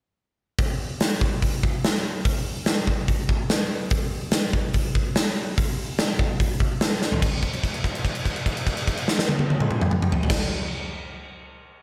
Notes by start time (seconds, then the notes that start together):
0.59 kick, open hi-hat
1.00 snare, open hi-hat
1.21 kick
1.42 kick, open hi-hat
1.63 kick
1.84 snare, open hi-hat
1.95 snare
2.25 kick, open hi-hat
2.66 snare, open hi-hat
2.87 kick
3.08 kick, open hi-hat
3.29 kick
3.50 snare, open hi-hat
3.90 kick, open hi-hat
4.32 snare, open hi-hat
4.53 kick
4.74 kick, open hi-hat
4.95 kick
5.16 snare, open hi-hat
5.27 snare
5.58 kick, open hi-hat
5.98 snare, open hi-hat
6.19 kick
6.40 kick, open hi-hat
6.60 kick
6.81 snare, open hi-hat
6.91 snare
7.02 snare
7.12 floor tom
7.22 kick, crash
7.42 kick, crash
7.53 crash
7.64 kick, crash
7.74 crash
7.84 kick, crash
7.95 crash
8.05 kick, crash
8.15 crash
8.26 kick, crash
8.36 crash
8.46 kick, crash
8.57 crash
8.67 kick, crash
8.77 crash
8.87 kick, crash
8.97 crash
9.08 snare
9.19 snare
9.29 high tom
9.39 high tom
9.50 high tom
9.60 mid tom
9.71 mid tom
9.81 mid tom
9.91 mid tom
10.02 mid tom
10.12 floor tom
10.23 floor tom
10.30 kick, snare, crash